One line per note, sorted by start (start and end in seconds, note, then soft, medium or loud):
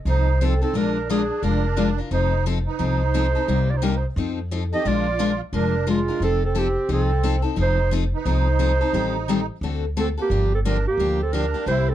0.05 0.61 C2 medium
0.05 0.28 F3 medium
0.05 0.28 C4 medium
0.05 0.28 D#4 medium
0.05 0.39 D#4 medium
0.05 0.29 A4 medium
0.05 0.47 C5 medium
0.41 0.53 F3 medium
0.41 0.60 C4 medium
0.41 0.53 C4 medium
0.41 0.53 D#4 medium
0.41 0.53 A4 medium
0.45 0.63 A4 medium
0.61 0.74 C4 medium
0.61 0.75 C4 soft
0.61 0.75 D#4 soft
0.61 0.75 A4 medium
0.61 0.79 A4 medium
0.73 1.29 A#1 medium
0.73 0.96 F3 medium
0.73 0.96 G#3 medium
0.73 0.97 D4 medium
0.73 1.08 D4 medium
0.73 0.97 F4 medium
0.73 0.96 A#4 medium
0.73 1.13 A#4 medium
1.10 1.21 F3 medium
1.10 1.21 G#3 medium
1.10 1.42 D4 medium
1.10 1.21 D4 medium
1.10 1.21 F4 medium
1.10 1.45 G#4 medium
1.10 1.21 A#4 medium
1.42 1.98 F1 medium
1.42 1.64 F3 medium
1.42 1.64 G#3 medium
1.42 1.65 D4 medium
1.42 1.99 D4 medium
1.42 1.65 F4 medium
1.42 1.99 A#4 medium
1.42 1.65 A#4 medium
1.77 1.88 F3 medium
1.77 1.89 G#3 medium
1.77 1.89 D4 medium
1.77 1.89 F4 medium
1.77 1.89 A#4 medium
1.98 2.11 D4 soft
1.98 2.11 F4 soft
1.98 2.11 A#4 medium
2.11 2.66 F1 medium
2.11 2.33 F3 medium
2.11 2.33 C4 medium
2.11 2.33 D#4 medium
2.11 2.44 D#4 medium
2.11 2.33 A4 medium
2.11 2.44 C5 medium
2.46 2.57 F3 medium
2.46 2.57 C4 medium
2.46 2.58 D#4 medium
2.46 2.58 A4 loud
2.67 3.63 D#4 medium
2.67 3.72 C5 medium
2.79 3.35 C2 medium
2.79 3.01 F3 medium
2.79 3.01 C4 medium
2.79 3.01 D#4 medium
2.79 3.01 A4 medium
3.14 3.25 F3 medium
3.14 3.26 C4 medium
3.14 3.26 D#4 medium
3.14 3.26 A4 medium
3.35 3.48 C4 soft
3.35 3.48 D#4 medium
3.35 3.48 A4 soft
3.48 4.03 C2 medium
3.48 3.69 C3 medium
3.48 3.70 G3 medium
3.48 3.70 A#3 medium
3.48 3.70 D#4 medium
3.48 3.70 G4 medium
3.68 3.75 F4 soft
3.68 3.79 D5 medium
3.75 3.82 D#4 medium
3.75 3.86 C5 medium
3.82 3.93 C3 medium
3.82 3.94 G3 medium
3.82 3.94 A#3 medium
3.82 3.93 D4 medium
3.82 3.94 D#4 medium
3.82 3.94 G4 loud
3.82 3.98 A#4 medium
3.94 4.05 D#4 medium
3.94 4.06 C5 medium
4.16 4.71 F2 medium
4.16 4.38 F3 medium
4.16 4.38 C4 medium
4.16 4.38 D#4 medium
4.16 4.39 A4 medium
4.51 4.62 F3 medium
4.51 4.63 C4 medium
4.51 4.63 D#4 medium
4.51 4.63 A4 medium
4.73 4.85 C4 soft
4.73 4.85 D#4 soft
4.73 4.86 G4 medium
4.73 4.85 A4 medium
4.73 4.89 D#5 loud
4.85 5.40 A#1 medium
4.85 5.06 F3 medium
4.85 5.06 G#3 medium
4.85 5.06 D4 medium
4.85 5.41 F4 medium
4.85 5.07 F4 medium
4.85 5.07 A#4 medium
4.85 5.42 D5 loud
5.19 5.30 F3 medium
5.19 5.30 G#3 medium
5.19 5.31 D4 loud
5.19 5.30 F4 loud
5.19 5.31 A#4 loud
5.53 6.07 F1 medium
5.53 5.74 F3 medium
5.53 5.75 G#3 medium
5.53 5.75 D4 medium
5.53 5.86 D4 medium
5.53 5.75 F4 medium
5.53 5.75 A#4 medium
5.53 5.91 A#4 medium
5.87 5.98 F3 medium
5.87 5.98 G#3 medium
5.87 6.23 G#3 medium
5.87 5.98 D4 medium
5.87 5.98 F4 medium
5.87 6.23 F4 medium
5.87 5.99 A#4 medium
6.08 6.22 D4 soft
6.08 6.21 F4 soft
6.08 6.21 A#4 medium
6.20 6.75 F1 medium
6.20 6.43 F3 medium
6.20 6.41 C4 medium
6.20 6.43 C4 medium
6.20 6.43 D#4 medium
6.20 6.43 A4 medium
6.24 6.42 A4 loud
6.44 6.55 C4 medium
6.44 6.60 A4 medium
6.55 6.66 F3 medium
6.55 6.67 C4 medium
6.55 6.90 C4 medium
6.55 6.67 D#4 medium
6.55 6.91 G4 medium
6.55 6.67 A4 medium
6.89 7.44 C2 medium
6.89 7.10 F3 medium
6.89 7.10 C4 medium
6.89 7.42 C4 medium
6.89 7.10 D#4 medium
6.89 7.10 A4 medium
6.93 7.43 A4 medium
7.23 7.35 F3 medium
7.23 7.35 C4 medium
7.23 7.35 D#4 medium
7.23 7.35 A4 medium
7.42 7.56 C4 soft
7.42 7.56 D#4 soft
7.42 7.56 A4 medium
7.56 8.12 F1 medium
7.56 7.78 F3 medium
7.56 7.78 C4 medium
7.56 7.78 D#4 medium
7.56 7.90 D#4 medium
7.56 7.79 A4 medium
7.62 7.92 C5 loud
7.91 8.03 F3 medium
7.91 8.03 C4 medium
7.91 8.03 D#4 medium
7.91 8.03 A4 loud
8.15 9.46 D#4 medium
8.15 9.47 C5 loud
8.25 8.80 C2 medium
8.25 8.47 F3 medium
8.25 8.47 C4 medium
8.25 8.47 D#4 medium
8.25 8.47 A4 medium
8.59 8.71 F3 medium
8.59 8.71 C4 medium
8.59 8.71 D#4 medium
8.59 8.71 A4 loud
8.81 8.93 C4 soft
8.81 8.94 D#4 medium
8.81 8.94 A4 medium
8.93 9.48 A1 medium
8.93 9.15 D#3 medium
8.93 9.15 G3 medium
8.93 9.15 C4 medium
8.93 9.15 G4 medium
8.93 9.15 A4 medium
9.28 9.39 D#3 medium
9.28 9.40 G3 medium
9.28 9.40 C4 loud
9.28 9.40 G4 medium
9.28 9.40 A4 loud
9.61 10.16 D2 medium
9.61 9.84 D3 medium
9.61 9.84 A3 medium
9.61 9.84 C4 medium
9.61 9.84 F#4 medium
9.61 9.84 A4 medium
9.97 10.08 D3 medium
9.97 10.08 A3 medium
9.97 10.08 C4 medium
9.97 10.07 C4 medium
9.97 10.08 F#4 medium
9.97 10.08 A4 medium
9.97 10.09 A4 medium
10.18 10.50 A#3 medium
10.18 10.31 C4 soft
10.18 10.31 F#4 soft
10.18 10.51 G4 medium
10.18 10.30 A4 medium
10.30 10.85 G1 medium
10.30 10.52 D3 medium
10.30 10.52 F3 medium
10.30 10.52 A#3 medium
10.30 10.52 D4 medium
10.30 10.52 G4 medium
10.54 10.59 C4 medium
10.54 10.60 A4 medium
10.65 10.76 D3 medium
10.65 10.76 F3 medium
10.65 10.76 A#3 loud
10.65 10.76 D4 medium
10.65 10.86 D4 medium
10.65 10.77 G4 medium
10.65 10.85 A#4 medium
10.87 11.19 A#3 medium
10.87 11.18 G4 medium
10.98 11.53 D2 medium
10.98 11.20 D3 medium
10.98 11.20 F3 medium
10.98 11.20 A#3 medium
10.98 11.21 D4 medium
10.98 11.20 G4 medium
11.21 11.33 C4 medium
11.21 11.34 A4 medium
11.33 11.44 D3 medium
11.33 11.44 F3 medium
11.33 11.45 A#3 medium
11.33 11.68 D4 medium
11.33 11.45 D4 medium
11.33 11.45 G4 medium
11.33 11.67 A#4 medium
11.54 11.66 A#3 soft
11.54 11.67 D4 soft
11.54 11.67 G4 medium
11.66 11.95 C2 medium
11.66 11.88 C3 medium
11.66 11.88 G3 medium
11.66 11.88 A#3 medium
11.66 11.88 E4 medium
11.66 11.88 G4 medium
11.66 11.91 C5 loud
11.88 11.95 C4 medium
11.88 11.95 A4 medium